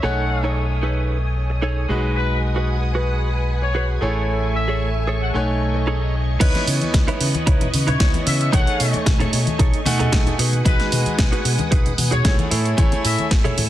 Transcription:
Already playing: string machine C#5 D#6
0.03 fingered electric bass B1, grand piano A3 D#4 C#5 G#5, clean electric guitar D#4 G#4 A4 C#5, trumpet section F#5, string machine G#5
0.43 clean electric guitar D#4 G#4 A4 C#5
0.83 clean electric guitar D#4 G#4 A4 B4
1.50 muted clean electric guitar stroke
1.62 clean electric guitar D#4 G#4 A4 C#5
1.89 fingered electric bass B1, grand piano G#3 D#4 F#4 B4, clean electric guitar F#4 G#4 B4, string machine B4 F#5 D#6
2.16 trumpet section B4
2.56 clean electric guitar F#4 G#4 B4
2.95 clean electric guitar F#4 G#4 B4
3.62 trumpet section C#5, muted clean electric guitar stroke
3.75 clean electric guitar F#4 G#4 B4
4.01 fingered electric bass A1, grand piano A3 E4 C#5 G#5, string machine A3 E5 C#6, clean electric guitar G#4 A4 C#5
4.55 trumpet section E5
4.68 clean electric guitar G#4 A4 C#5
5.07 clean electric guitar G#4 A4 C#5
5.22 trumpet section F#5
5.34 fingered electric bass B1, grand piano A3 D#4 C#5 G#5, string machine D#5, trumpet section F#5
5.75 muted clean electric guitar stroke
5.87 clean electric guitar D#4 G#4 A4 C#5
6.40 fingered electric bass C#2, grand piano E3 B3 C#5 D#5, clean electric guitar D#4 E4 B4 C#5, string machine B4 D#5 C#6, trumpet section B4, kick, closed hi-hat, crash, high conga
6.55 snare, closed hi-hat, muted conga
6.67 fingered electric bass C#3, open hi-hat
6.81 muted fingered electric bass stroke, closed hi-hat, high conga
6.94 fingered electric bass C#2, kick, snare, closed hi-hat, muted conga
7.08 clean electric guitar D#4 E4 B4 C#5, closed hi-hat
7.20 fingered electric bass C#3, open hi-hat, muted conga
7.35 closed hi-hat, high conga
7.46 fingered electric bass C#2, clean electric guitar D#4 E4 B4 C#5, kick, closed hi-hat
7.61 closed hi-hat, muted conga, low conga
7.74 fingered electric bass C#3, open hi-hat, high conga
7.87 clean electric guitar D#4 E4 B4 C#5, trumpet section C#5, closed hi-hat, muted conga, low conga
8.00 fingered electric bass C#2, grand piano E3 B3 C#5 D#5, kick, snare, closed hi-hat
8.14 closed hi-hat, high conga
8.27 fingered electric bass C#3, trumpet section E5, open hi-hat, muted conga
8.41 trumpet section E5, closed hi-hat
8.52 fingered electric bass B1, grand piano A3 D#4 C#5 G#5, string machine A3 G#5, clean electric guitar D#4 G#4 A4 C#5, trumpet section F#5, kick, closed hi-hat, muted conga, high conga
8.67 closed hi-hat
8.80 fingered electric bass B2, open hi-hat
8.93 muted fingered electric bass stroke, closed hi-hat, muted conga, high conga
9.06 fingered electric bass B1, kick, snare, closed hi-hat
9.20 clean electric guitar D#4 G#4 A4 C#5, closed hi-hat, muted conga, low conga
9.33 fingered electric bass B2, open hi-hat
9.47 closed hi-hat, high conga
9.59 fingered electric bass B1, clean electric guitar D#4 G#4 A4 C#5, kick, closed hi-hat, muted conga
9.74 closed hi-hat
9.85 fingered electric bass B2, grand piano A3 D#4 F#5 G#5, open hi-hat, muted conga, high conga
9.99 clean electric guitar D#4 G#4 A4 D#5, closed hi-hat, low conga
10.12 fingered electric bass B1, kick, snare, closed hi-hat
10.26 closed hi-hat, muted conga, high conga, low conga
10.39 fingered electric bass B2, clean electric guitar D#4 F#4 G#4 B4, string machine B4 F#5 D#6, open hi-hat
10.53 closed hi-hat, muted conga
10.65 fingered electric bass B1, grand piano G#3 D#4 F#4 B4, trumpet section B4, kick, closed hi-hat, high conga
10.80 snare, closed hi-hat
10.92 fingered electric bass B2, open hi-hat, muted conga
11.06 muted fingered electric bass stroke, closed hi-hat, high conga
11.19 fingered electric bass B1, kick, snare, closed hi-hat, muted conga
11.32 clean electric guitar D#4 F#4 G#4 B4, closed hi-hat
11.45 fingered electric bass B2, open hi-hat
11.59 closed hi-hat, muted conga, high conga
11.71 fingered electric bass B1, clean electric guitar D#4 F#4 G#4 B4, kick, closed hi-hat
11.86 closed hi-hat, muted conga, low conga
11.98 fingered electric bass B2, open hi-hat, high conga
12.11 clean electric guitar D#4 F#4 G#4 C#5, trumpet section C#5, closed hi-hat, low conga
12.24 fingered electric bass B1, grand piano A3 E4 G#4 C#5, kick, snare, closed hi-hat, muted conga
12.39 closed hi-hat, high conga
12.50 fingered electric bass A2, clean electric guitar E4 G#4 A4 C#5, string machine C#5 G#5 E6, open hi-hat, muted conga
12.65 closed hi-hat
12.77 fingered electric bass A1, grand piano A3 E4 C#5 G#5, kick, closed hi-hat, high conga
12.92 closed hi-hat, muted conga
13.05 fingered electric bass A2, trumpet section E5, open hi-hat
13.18 muted fingered electric bass stroke, closed hi-hat, muted conga, high conga
13.31 fingered electric bass A1, kick, snare, closed hi-hat
13.44 clean electric guitar E4 G#4 A4 C#5, closed hi-hat, low conga
13.58 fingered electric bass A2, open hi-hat, muted conga

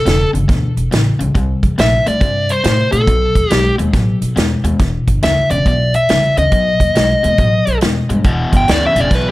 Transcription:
Already playing: lead electric guitar A4
0.06 upright bass E1, overdriven electric guitar E2 C#3, snare, closed hi-hat
0.33 upright bass G1, overdriven electric guitar E2 C#3, closed hi-hat
0.48 upright bass D2, overdriven electric guitar E2 B2, kick, snare, closed hi-hat
0.77 upright bass E1, closed hi-hat
0.91 upright bass A1, overdriven electric guitar E2 C#3, snare, closed hi-hat
1.19 upright bass C2, overdriven electric guitar E2 C#3, closed hi-hat
1.35 upright bass C2, overdriven electric guitar C3 G3, kick, closed hi-hat
1.63 upright bass E2, kick, closed hi-hat
1.78 upright bass A#1, overdriven electric guitar C3 A3, lead electric guitar E5, snare, closed hi-hat
2.06 upright bass C2, overdriven electric guitar C3 A3, lead electric guitar D5, closed hi-hat
2.21 upright bass G2, overdriven electric guitar C3 G3, kick, closed hi-hat
2.49 lead electric guitar C5, closed hi-hat
2.64 upright bass A2, overdriven electric guitar C3 A3, snare, closed hi-hat
2.92 upright bass A#2, overdriven electric guitar C3 A3, lead electric guitar A4, closed hi-hat
3.07 upright bass B1, overdriven electric guitar B2 F#3, kick, closed hi-hat
3.35 upright bass D#2, kick, closed hi-hat
3.50 upright bass B1, overdriven electric guitar B2 G#3, lead electric guitar G4, snare, closed hi-hat
3.78 upright bass D#2, overdriven electric guitar B2 G#3, closed hi-hat
3.93 upright bass A1, overdriven electric guitar B2 F#3, kick, snare, closed hi-hat
4.21 upright bass B1, closed hi-hat
4.36 upright bass E2, overdriven electric guitar B2 G#3, snare, closed hi-hat
4.64 upright bass D#2, overdriven electric guitar B2 G#3, closed hi-hat
4.79 upright bass E1, overdriven electric guitar E2 B2, kick, snare, closed hi-hat
5.07 upright bass G1, kick, closed hi-hat
5.22 upright bass D2, overdriven electric guitar E2 C#3, lead electric guitar E5, snare, closed hi-hat
5.50 upright bass E1, overdriven electric guitar E2 C#3, lead electric guitar D5, closed hi-hat
5.66 upright bass B1, overdriven electric guitar E2 B2, lead electric guitar D5, kick, closed hi-hat
5.94 lead electric guitar E5, closed hi-hat
6.09 upright bass C2, overdriven electric guitar E2 C#3, snare, closed hi-hat
6.37 upright bass D2, overdriven electric guitar E2 C#3, lead electric guitar D#5, closed hi-hat
6.52 upright bass B1, overdriven electric guitar B2 F#3, kick, closed hi-hat
6.80 upright bass D#2, kick, closed hi-hat
6.95 upright bass B1, overdriven electric guitar B2 G#3, snare, closed hi-hat
7.23 upright bass D#2, overdriven electric guitar B2 G#3, closed hi-hat
7.38 upright bass A1, overdriven electric guitar B2 F#3, kick, closed hi-hat
7.67 upright bass B1, closed hi-hat
7.81 upright bass E2, overdriven electric guitar B2 G#3, snare, closed hi-hat
8.09 upright bass G2, overdriven electric guitar B2 G#3, closed hi-hat
8.24 upright bass E1, overdriven electric guitar E2 B2, kick, closed hi-hat
8.52 upright bass G1, kick, closed hi-hat
8.57 lead electric guitar G5
8.68 upright bass D2, overdriven electric guitar E2 C#3, lead electric guitar D5, snare, closed hi-hat
8.87 lead electric guitar E5
8.95 upright bass E1, overdriven electric guitar E2 C#3, closed hi-hat
9.01 lead electric guitar D5
9.10 upright bass B1, overdriven electric guitar E2 B2, kick, snare, closed hi-hat
9.15 lead electric guitar B4

